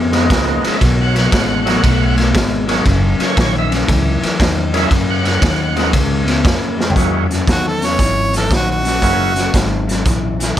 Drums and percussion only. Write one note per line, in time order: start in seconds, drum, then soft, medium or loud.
0.13 snare soft
0.13 ride medium
0.30 kick medium
0.30 snare loud
0.30 ride medium
0.64 snare soft
0.64 ride medium
0.81 kick medium
0.81 snare soft
0.81 ride medium
1.16 snare soft
1.16 ride medium
1.32 kick medium
1.32 snare loud
1.32 ride medium
1.67 snare soft
1.67 ride medium
1.84 kick medium
1.84 snare soft
1.84 ride medium
2.18 snare soft
2.18 ride medium
2.35 kick medium
2.35 snare loud
2.35 ride medium
2.69 snare soft
2.69 ride medium
2.86 kick medium
2.86 snare soft
2.86 ride medium
3.20 snare soft
3.20 ride medium
3.37 kick medium
3.37 snare loud
3.37 ride medium
3.72 snare soft
3.72 ride medium
3.88 kick loud
3.88 snare soft
3.88 ride medium
4.23 snare soft
4.23 ride medium
4.40 kick medium
4.40 snare loud
4.40 ride medium
4.74 snare soft
4.74 ride medium
4.91 kick medium
4.91 snare soft
4.91 ride medium
5.25 snare soft
5.25 ride medium
5.42 kick medium
5.42 snare loud
5.42 ride medium
5.76 snare soft
5.76 ride medium
5.93 kick loud
5.93 snare soft
5.93 ride loud
6.28 snare soft
6.28 ride medium
6.45 kick loud
6.45 snare loud
6.45 ride medium
6.81 snare medium
6.90 floor tom medium
6.96 kick medium
6.96 snare soft
6.96 closed hi-hat medium
7.31 snare soft
7.31 closed hi-hat soft
7.47 kick medium
7.47 snare loud
7.47 closed hi-hat medium
7.82 snare soft
7.82 closed hi-hat medium
7.99 kick medium
7.99 snare soft
7.99 closed hi-hat medium
8.33 snare soft
8.33 closed hi-hat medium
8.51 kick medium
8.51 snare loud
8.51 closed hi-hat medium
8.85 snare soft
8.85 closed hi-hat medium
9.02 kick medium
9.02 snare soft
9.02 closed hi-hat medium
9.36 snare soft
9.36 closed hi-hat medium
9.54 kick medium
9.54 snare loud
9.54 closed hi-hat medium
9.89 snare soft
9.89 closed hi-hat medium
10.06 kick medium
10.06 snare soft
10.06 closed hi-hat medium
10.40 snare soft
10.40 closed hi-hat medium